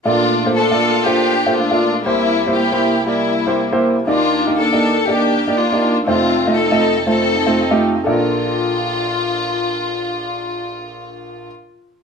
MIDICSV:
0, 0, Header, 1, 3, 480
1, 0, Start_track
1, 0, Key_signature, -2, "major"
1, 0, Tempo, 501253
1, 49, Time_signature, 4, 2, 24, 8
1, 11520, End_track
2, 0, Start_track
2, 0, Title_t, "Upright piano"
2, 0, Program_c, 0, 0
2, 50, Note_on_c, 0, 46, 53
2, 52, Note_on_c, 0, 34, 57
2, 52, Note_on_c, 0, 58, 62
2, 53, Note_on_c, 0, 65, 61
2, 54, Note_on_c, 0, 69, 57
2, 56, Note_on_c, 0, 74, 73
2, 293, Note_off_c, 0, 58, 0
2, 294, Note_off_c, 0, 65, 0
2, 294, Note_off_c, 0, 69, 0
2, 295, Note_off_c, 0, 74, 0
2, 441, Note_on_c, 0, 58, 60
2, 442, Note_on_c, 0, 65, 56
2, 442, Note_on_c, 0, 72, 69
2, 444, Note_on_c, 0, 69, 58
2, 551, Note_off_c, 0, 58, 0
2, 551, Note_off_c, 0, 65, 0
2, 552, Note_off_c, 0, 69, 0
2, 552, Note_off_c, 0, 72, 0
2, 683, Note_on_c, 0, 65, 57
2, 684, Note_on_c, 0, 58, 68
2, 684, Note_on_c, 0, 74, 67
2, 685, Note_on_c, 0, 69, 55
2, 889, Note_off_c, 0, 58, 0
2, 889, Note_off_c, 0, 65, 0
2, 890, Note_off_c, 0, 69, 0
2, 890, Note_off_c, 0, 74, 0
2, 1014, Note_on_c, 0, 65, 57
2, 1016, Note_on_c, 0, 69, 56
2, 1017, Note_on_c, 0, 72, 67
2, 1018, Note_on_c, 0, 58, 58
2, 1256, Note_off_c, 0, 65, 0
2, 1257, Note_off_c, 0, 69, 0
2, 1257, Note_off_c, 0, 72, 0
2, 1258, Note_off_c, 0, 58, 0
2, 1402, Note_on_c, 0, 65, 60
2, 1403, Note_on_c, 0, 58, 61
2, 1403, Note_on_c, 0, 69, 55
2, 1404, Note_on_c, 0, 72, 69
2, 1513, Note_off_c, 0, 58, 0
2, 1513, Note_off_c, 0, 65, 0
2, 1513, Note_off_c, 0, 69, 0
2, 1514, Note_off_c, 0, 72, 0
2, 1637, Note_on_c, 0, 58, 59
2, 1638, Note_on_c, 0, 65, 58
2, 1640, Note_on_c, 0, 69, 58
2, 1640, Note_on_c, 0, 74, 67
2, 1847, Note_off_c, 0, 58, 0
2, 1848, Note_off_c, 0, 65, 0
2, 1848, Note_off_c, 0, 69, 0
2, 1849, Note_off_c, 0, 74, 0
2, 1937, Note_off_c, 0, 46, 0
2, 1938, Note_off_c, 0, 34, 0
2, 1972, Note_on_c, 0, 58, 64
2, 1973, Note_on_c, 0, 36, 55
2, 1973, Note_on_c, 0, 72, 73
2, 1974, Note_on_c, 0, 48, 53
2, 1974, Note_on_c, 0, 64, 61
2, 1974, Note_on_c, 0, 67, 57
2, 2216, Note_off_c, 0, 58, 0
2, 2216, Note_off_c, 0, 72, 0
2, 2217, Note_off_c, 0, 64, 0
2, 2217, Note_off_c, 0, 67, 0
2, 2364, Note_on_c, 0, 58, 58
2, 2365, Note_on_c, 0, 67, 55
2, 2366, Note_on_c, 0, 64, 56
2, 2367, Note_on_c, 0, 72, 69
2, 2475, Note_off_c, 0, 58, 0
2, 2475, Note_off_c, 0, 67, 0
2, 2476, Note_off_c, 0, 64, 0
2, 2476, Note_off_c, 0, 72, 0
2, 2605, Note_on_c, 0, 67, 56
2, 2606, Note_on_c, 0, 72, 70
2, 2609, Note_on_c, 0, 58, 66
2, 2609, Note_on_c, 0, 64, 58
2, 2812, Note_off_c, 0, 67, 0
2, 2812, Note_off_c, 0, 72, 0
2, 2814, Note_off_c, 0, 58, 0
2, 2814, Note_off_c, 0, 64, 0
2, 2937, Note_on_c, 0, 67, 55
2, 2938, Note_on_c, 0, 58, 64
2, 2938, Note_on_c, 0, 64, 59
2, 2940, Note_on_c, 0, 74, 63
2, 3179, Note_off_c, 0, 58, 0
2, 3179, Note_off_c, 0, 64, 0
2, 3179, Note_off_c, 0, 67, 0
2, 3180, Note_off_c, 0, 74, 0
2, 3320, Note_on_c, 0, 58, 64
2, 3323, Note_on_c, 0, 64, 60
2, 3323, Note_on_c, 0, 72, 73
2, 3324, Note_on_c, 0, 67, 58
2, 3433, Note_off_c, 0, 58, 0
2, 3435, Note_off_c, 0, 64, 0
2, 3435, Note_off_c, 0, 72, 0
2, 3436, Note_off_c, 0, 67, 0
2, 3566, Note_on_c, 0, 64, 69
2, 3566, Note_on_c, 0, 67, 66
2, 3567, Note_on_c, 0, 72, 81
2, 3570, Note_on_c, 0, 58, 73
2, 3773, Note_off_c, 0, 64, 0
2, 3773, Note_off_c, 0, 67, 0
2, 3773, Note_off_c, 0, 72, 0
2, 3775, Note_off_c, 0, 58, 0
2, 3858, Note_off_c, 0, 36, 0
2, 3859, Note_off_c, 0, 48, 0
2, 3899, Note_on_c, 0, 67, 56
2, 3900, Note_on_c, 0, 58, 67
2, 3901, Note_on_c, 0, 63, 61
2, 3903, Note_on_c, 0, 39, 59
2, 3903, Note_on_c, 0, 51, 55
2, 3903, Note_on_c, 0, 74, 71
2, 4140, Note_off_c, 0, 58, 0
2, 4140, Note_off_c, 0, 67, 0
2, 4141, Note_off_c, 0, 63, 0
2, 4142, Note_off_c, 0, 74, 0
2, 4282, Note_on_c, 0, 58, 60
2, 4282, Note_on_c, 0, 63, 60
2, 4283, Note_on_c, 0, 67, 56
2, 4284, Note_on_c, 0, 77, 68
2, 4394, Note_off_c, 0, 63, 0
2, 4395, Note_off_c, 0, 58, 0
2, 4395, Note_off_c, 0, 67, 0
2, 4395, Note_off_c, 0, 77, 0
2, 4525, Note_on_c, 0, 58, 62
2, 4527, Note_on_c, 0, 74, 72
2, 4528, Note_on_c, 0, 67, 60
2, 4530, Note_on_c, 0, 63, 58
2, 4732, Note_off_c, 0, 58, 0
2, 4733, Note_off_c, 0, 74, 0
2, 4734, Note_off_c, 0, 63, 0
2, 4734, Note_off_c, 0, 67, 0
2, 4860, Note_on_c, 0, 58, 57
2, 4861, Note_on_c, 0, 67, 57
2, 4863, Note_on_c, 0, 63, 51
2, 4863, Note_on_c, 0, 74, 71
2, 5100, Note_off_c, 0, 58, 0
2, 5101, Note_off_c, 0, 67, 0
2, 5102, Note_off_c, 0, 63, 0
2, 5102, Note_off_c, 0, 74, 0
2, 5244, Note_on_c, 0, 58, 64
2, 5244, Note_on_c, 0, 67, 57
2, 5245, Note_on_c, 0, 74, 68
2, 5246, Note_on_c, 0, 63, 55
2, 5355, Note_off_c, 0, 58, 0
2, 5355, Note_off_c, 0, 67, 0
2, 5356, Note_off_c, 0, 63, 0
2, 5356, Note_off_c, 0, 74, 0
2, 5481, Note_on_c, 0, 74, 68
2, 5482, Note_on_c, 0, 58, 60
2, 5482, Note_on_c, 0, 67, 59
2, 5483, Note_on_c, 0, 63, 59
2, 5689, Note_off_c, 0, 74, 0
2, 5690, Note_off_c, 0, 58, 0
2, 5690, Note_off_c, 0, 67, 0
2, 5691, Note_off_c, 0, 63, 0
2, 5780, Note_off_c, 0, 51, 0
2, 5781, Note_off_c, 0, 39, 0
2, 5813, Note_on_c, 0, 29, 59
2, 5815, Note_on_c, 0, 41, 53
2, 5815, Note_on_c, 0, 63, 58
2, 5816, Note_on_c, 0, 57, 65
2, 5817, Note_on_c, 0, 65, 63
2, 5817, Note_on_c, 0, 72, 72
2, 6057, Note_off_c, 0, 57, 0
2, 6057, Note_off_c, 0, 63, 0
2, 6058, Note_off_c, 0, 65, 0
2, 6058, Note_off_c, 0, 72, 0
2, 6193, Note_on_c, 0, 75, 66
2, 6194, Note_on_c, 0, 63, 56
2, 6195, Note_on_c, 0, 57, 65
2, 6195, Note_on_c, 0, 65, 61
2, 6309, Note_off_c, 0, 63, 0
2, 6309, Note_off_c, 0, 75, 0
2, 6310, Note_off_c, 0, 57, 0
2, 6310, Note_off_c, 0, 65, 0
2, 6432, Note_on_c, 0, 57, 60
2, 6432, Note_on_c, 0, 63, 61
2, 6433, Note_on_c, 0, 65, 56
2, 6433, Note_on_c, 0, 75, 71
2, 6644, Note_off_c, 0, 57, 0
2, 6644, Note_off_c, 0, 63, 0
2, 6645, Note_off_c, 0, 65, 0
2, 6645, Note_off_c, 0, 75, 0
2, 6767, Note_on_c, 0, 72, 61
2, 6769, Note_on_c, 0, 57, 61
2, 6769, Note_on_c, 0, 63, 50
2, 6770, Note_on_c, 0, 65, 54
2, 7012, Note_off_c, 0, 72, 0
2, 7013, Note_off_c, 0, 57, 0
2, 7013, Note_off_c, 0, 63, 0
2, 7013, Note_off_c, 0, 65, 0
2, 7146, Note_on_c, 0, 63, 52
2, 7147, Note_on_c, 0, 65, 57
2, 7148, Note_on_c, 0, 57, 61
2, 7149, Note_on_c, 0, 72, 68
2, 7265, Note_off_c, 0, 63, 0
2, 7265, Note_off_c, 0, 65, 0
2, 7266, Note_off_c, 0, 57, 0
2, 7266, Note_off_c, 0, 72, 0
2, 7382, Note_on_c, 0, 57, 74
2, 7384, Note_on_c, 0, 63, 63
2, 7385, Note_on_c, 0, 65, 64
2, 7386, Note_on_c, 0, 67, 84
2, 7598, Note_off_c, 0, 57, 0
2, 7600, Note_off_c, 0, 63, 0
2, 7600, Note_off_c, 0, 65, 0
2, 7600, Note_off_c, 0, 67, 0
2, 7693, Note_off_c, 0, 29, 0
2, 7694, Note_off_c, 0, 41, 0
2, 7700, Note_on_c, 0, 69, 69
2, 7714, Note_on_c, 0, 62, 64
2, 7722, Note_on_c, 0, 34, 70
2, 7724, Note_on_c, 0, 65, 62
2, 7741, Note_on_c, 0, 70, 75
2, 10959, Note_off_c, 0, 69, 0
2, 10973, Note_off_c, 0, 62, 0
2, 10981, Note_off_c, 0, 34, 0
2, 10983, Note_off_c, 0, 65, 0
2, 10999, Note_off_c, 0, 70, 0
2, 11520, End_track
3, 0, Start_track
3, 0, Title_t, "String section"
3, 0, Program_c, 1, 48
3, 50, Note_on_c, 1, 65, 85
3, 59, Note_on_c, 1, 57, 62
3, 62, Note_on_c, 1, 62, 64
3, 497, Note_off_c, 1, 65, 0
3, 532, Note_on_c, 1, 69, 89
3, 533, Note_off_c, 1, 62, 0
3, 544, Note_on_c, 1, 62, 63
3, 544, Note_on_c, 1, 65, 65
3, 979, Note_off_c, 1, 57, 0
3, 1001, Note_on_c, 1, 67, 87
3, 1002, Note_off_c, 1, 62, 0
3, 1013, Note_off_c, 1, 69, 0
3, 1013, Note_on_c, 1, 62, 63
3, 1462, Note_off_c, 1, 65, 0
3, 1483, Note_off_c, 1, 62, 0
3, 1486, Note_on_c, 1, 65, 78
3, 1488, Note_off_c, 1, 67, 0
3, 1495, Note_on_c, 1, 57, 58
3, 1495, Note_on_c, 1, 62, 60
3, 1875, Note_off_c, 1, 65, 0
3, 1942, Note_off_c, 1, 57, 0
3, 1942, Note_off_c, 1, 62, 0
3, 1964, Note_on_c, 1, 64, 90
3, 1973, Note_on_c, 1, 58, 61
3, 1978, Note_on_c, 1, 55, 64
3, 2416, Note_off_c, 1, 64, 0
3, 2446, Note_on_c, 1, 67, 79
3, 2450, Note_off_c, 1, 58, 0
3, 2458, Note_on_c, 1, 64, 60
3, 2462, Note_on_c, 1, 58, 55
3, 2900, Note_off_c, 1, 55, 0
3, 2923, Note_off_c, 1, 64, 0
3, 2927, Note_off_c, 1, 58, 0
3, 2931, Note_off_c, 1, 67, 0
3, 2934, Note_on_c, 1, 64, 71
3, 2937, Note_on_c, 1, 55, 51
3, 2938, Note_on_c, 1, 58, 47
3, 3666, Note_off_c, 1, 64, 0
3, 3859, Note_off_c, 1, 55, 0
3, 3860, Note_off_c, 1, 58, 0
3, 3896, Note_on_c, 1, 58, 65
3, 3900, Note_on_c, 1, 62, 64
3, 3900, Note_on_c, 1, 65, 89
3, 4345, Note_off_c, 1, 65, 0
3, 4374, Note_off_c, 1, 62, 0
3, 4378, Note_on_c, 1, 69, 85
3, 4385, Note_on_c, 1, 62, 64
3, 4818, Note_off_c, 1, 58, 0
3, 4824, Note_off_c, 1, 69, 0
3, 4842, Note_off_c, 1, 62, 0
3, 4848, Note_on_c, 1, 67, 85
3, 4853, Note_on_c, 1, 58, 60
3, 4854, Note_on_c, 1, 62, 60
3, 5332, Note_off_c, 1, 58, 0
3, 5332, Note_off_c, 1, 67, 0
3, 5335, Note_off_c, 1, 62, 0
3, 5344, Note_on_c, 1, 58, 59
3, 5344, Note_on_c, 1, 65, 77
3, 5347, Note_on_c, 1, 62, 55
3, 5724, Note_off_c, 1, 65, 0
3, 5786, Note_off_c, 1, 58, 0
3, 5788, Note_off_c, 1, 62, 0
3, 5811, Note_on_c, 1, 65, 82
3, 5813, Note_on_c, 1, 57, 64
3, 5813, Note_on_c, 1, 60, 58
3, 6259, Note_off_c, 1, 65, 0
3, 6278, Note_off_c, 1, 60, 0
3, 6287, Note_on_c, 1, 69, 85
3, 6289, Note_on_c, 1, 60, 57
3, 6290, Note_on_c, 1, 63, 57
3, 6734, Note_off_c, 1, 57, 0
3, 6757, Note_off_c, 1, 69, 0
3, 6758, Note_off_c, 1, 60, 0
3, 6760, Note_off_c, 1, 63, 0
3, 6769, Note_on_c, 1, 69, 80
3, 6770, Note_on_c, 1, 60, 56
3, 6772, Note_on_c, 1, 63, 52
3, 7500, Note_off_c, 1, 69, 0
3, 7692, Note_off_c, 1, 60, 0
3, 7693, Note_off_c, 1, 63, 0
3, 7727, Note_on_c, 1, 65, 76
3, 10985, Note_off_c, 1, 65, 0
3, 11520, End_track
0, 0, End_of_file